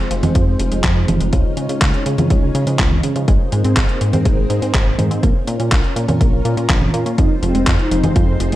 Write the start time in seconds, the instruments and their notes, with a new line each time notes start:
Already playing: string machine G#3 C4 D#4 F4 C5
0.11 analog synth bass F1, synth arpeggio sound F3, closed hi-hat
0.23 analog synth bass F1, synth arpeggio sound G#3, closed hi-hat, high conga
0.35 analog synth bass F2, synth arpeggio sound F3, kick, closed hi-hat
0.60 analog synth bass F1, synth arpeggio sound F3, closed hi-hat
0.72 analog synth bass F1, synth arpeggio sound G#3, closed hi-hat
0.84 analog synth bass F2, synth arpeggio sound F3, kick, clap, closed hi-hat
1.08 analog synth bass F1, synth arpeggio sound F3, closed hi-hat, high conga
1.21 analog synth bass F1, synth arpeggio sound G#3, closed hi-hat
1.33 analog synth bass C#2, synth arpeggio sound C#3, string machine G#3 C#4 C#5, kick, closed hi-hat
1.57 analog synth bass C#3, synth arpeggio sound C#3, closed hi-hat
1.69 analog synth bass C#3, synth arpeggio sound F3, closed hi-hat
1.81 analog synth bass C#2, synth arpeggio sound C#3, kick, clap, closed hi-hat
1.94 closed hi-hat
2.06 analog synth bass C#3, synth arpeggio sound C#3, closed hi-hat
2.18 analog synth bass C#3, synth arpeggio sound F3, closed hi-hat, high conga
2.30 analog synth bass C#2, synth arpeggio sound C#3, kick, closed hi-hat
2.55 analog synth bass C#3, synth arpeggio sound C#3, closed hi-hat
2.67 analog synth bass C#3, synth arpeggio sound F3, closed hi-hat
2.79 analog synth bass C#2, synth arpeggio sound C#3, kick, clap, closed hi-hat
2.91 high conga
3.03 analog synth bass C#3, synth arpeggio sound C#3, closed hi-hat
3.16 analog synth bass C#3, synth arpeggio sound F3, closed hi-hat
3.28 analog synth bass G#1, synth arpeggio sound G#3, string machine A#3 C4 G#4 C5, kick, closed hi-hat
3.52 analog synth bass G#2, synth arpeggio sound G#3, closed hi-hat
3.64 analog synth bass G#2, synth arpeggio sound C4, closed hi-hat
3.77 analog synth bass G#1, synth arpeggio sound G#3, kick, clap, closed hi-hat
3.89 closed hi-hat
4.01 analog synth bass G#2, synth arpeggio sound G#3, closed hi-hat
4.13 analog synth bass G#2, synth arpeggio sound C4, closed hi-hat, high conga
4.25 analog synth bass G#1, synth arpeggio sound G#3, kick, closed hi-hat
4.50 analog synth bass G#2, synth arpeggio sound G#3, closed hi-hat
4.62 analog synth bass G#2, synth arpeggio sound C4, closed hi-hat
4.74 analog synth bass G#1, synth arpeggio sound G#3, kick, clap, closed hi-hat
4.98 analog synth bass G#2, synth arpeggio sound G#3, closed hi-hat, high conga
5.11 analog synth bass G#2, synth arpeggio sound C4, closed hi-hat
5.23 analog synth bass A#1, synth arpeggio sound A#3, string machine C#4 F4 A#4, kick, closed hi-hat
5.47 analog synth bass A#2, synth arpeggio sound A#3, closed hi-hat
5.60 analog synth bass A#2, synth arpeggio sound C#4, closed hi-hat
5.72 analog synth bass A#1, synth arpeggio sound A#3, kick, clap, closed hi-hat
5.84 closed hi-hat
5.96 analog synth bass A#2, synth arpeggio sound A#3, closed hi-hat
6.08 analog synth bass A#2, synth arpeggio sound C#4, closed hi-hat, high conga
6.21 analog synth bass A#1, synth arpeggio sound A#3, kick, closed hi-hat
6.45 analog synth bass A#2, synth arpeggio sound A#3, closed hi-hat
6.57 analog synth bass A#2, synth arpeggio sound C#4, closed hi-hat
6.69 analog synth bass A#1, synth arpeggio sound A#3, kick, clap, closed hi-hat
6.82 high conga
6.94 analog synth bass A#2, synth arpeggio sound A#3, closed hi-hat
7.06 analog synth bass A#2, synth arpeggio sound C#4, closed hi-hat
7.18 analog synth bass F2, synth arpeggio sound F3, string machine G#3 C4 D#4 C5, analog polysynth D#4, kick, closed hi-hat
7.42 analog synth bass F1, synth arpeggio sound F3, analog polysynth C4, closed hi-hat
7.55 analog synth bass F1, synth arpeggio sound G#3, closed hi-hat
7.67 analog synth bass F2, synth arpeggio sound F3, kick, clap, closed hi-hat
7.79 analog polysynth D#4, closed hi-hat
7.91 analog synth bass F1, synth arpeggio sound F3, closed hi-hat
8.04 analog synth bass F1, synth arpeggio sound G#3, closed hi-hat, high conga
8.16 analog synth bass F2, synth arpeggio sound F3, kick, closed hi-hat
8.40 analog synth bass F1, synth arpeggio sound F3, closed hi-hat
8.52 analog synth bass F1, synth arpeggio sound G#3, closed hi-hat